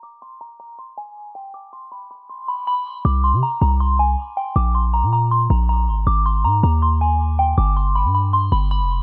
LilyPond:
<<
  \new Staff \with { instrumentName = "Synth bell" } { \time 4/4 \key aes \lydian \tempo 4 = 159 d'''8 c'''8 bes''8 bes''8 c'''8 aes''4 g''8 | d'''8 c'''8 b''8 b''8 c'''8 b''8 b''4 | d'''8 c'''8 bes''8 bes''8 c'''8 aes''4 g''8 | d'''8 c'''8 bes''8 bes''8 c'''8 bes''8 bes''4 |
d'''8 c'''8 bes''8 bes''8 c'''8 aes''4 g''8 | d'''8 c'''8 b''8 b''8 c'''8 b''8 b''4 | }
  \new Staff \with { instrumentName = "808-style bass" } { \clef bass \time 4/4 \key aes \lydian r1 | r1 | c,8. c16 r8 c,4. r4 | bes,,4~ bes,,16 bes,4~ bes,16 bes,,4 aes,,8 |
aes,,4 aes,8 ees,2~ ees,8 | g,,4~ g,,16 g,4~ g,16 g,,8. f,,8. | }
>>